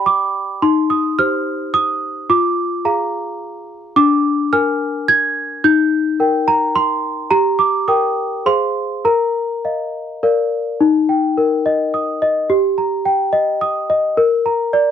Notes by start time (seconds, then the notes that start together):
Already playing: G4 D5 G5 B5
0.06 D6
0.62 D#4 C6
0.90 D#6
1.19 G4 C5 F6
1.74 D#6
2.30 F4 D6
2.85 G#4 F5 A#5
3.96 D4 D6
4.53 A#4 G#5 F6
5.08 G#6
5.64 D#4 G6
6.20 A#4 G5
6.48 A#5
6.76 C6
7.31 G4 A#5
7.59 D6
7.88 A#4 G5 D#6
8.46 G#4 C5 F5 C6
9.05 A#4 A#5
9.65 D#5 F5
10.23 A#4 D5 F5
10.81 D#4
11.09 G5
11.38 A#4
11.66 D#5
11.94 D#6
12.22 D#5
12.50 G4
12.78 A#5
13.05 G5
13.33 D#5
13.61 D#6
13.90 D#5
14.17 A#4
14.46 A#5
14.73 D5